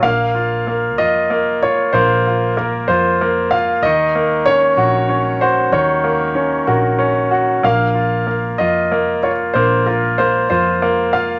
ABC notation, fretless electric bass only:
X:1
M:6/8
L:1/8
Q:3/8=63
K:Bbm
V:1 name="Fretless electric bass" clef=bass
B,,,3 F,,3 | B,,,3 F,,3 | E,,3 B,,,3 | E,,3 B,,,3 |
B,,,3 F,,3 | B,,,3 F,,3 |]